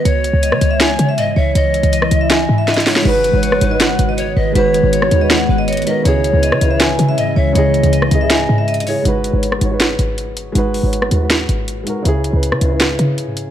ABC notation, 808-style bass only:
X:1
M:4/4
L:1/16
Q:1/4=160
K:G#m
V:1 name="808-style bass" clef=bass
C,,3 C,,2 C, C,,4 C,2 G,,2 C,,2 | C,,3 C,,3 C,,4 G,,6 | G,,,3 G,,,3 G,,,4 G,,,4 G,,,2 | G,,,3 G,,,3 D,,4 G,,,4 z2 |
C,,3 C,,2 C, C,,4 C,2 G,,2 C,,2 | C,,3 C,,3 C,,4 G,,6 | G,,,3 G,,,3 G,,,4 G,,,6 | G,,,3 G,,,3 D,,4 G,,,4 z2 |
C,,3 C,,2 C, C,,4 C,3 G,,3 |]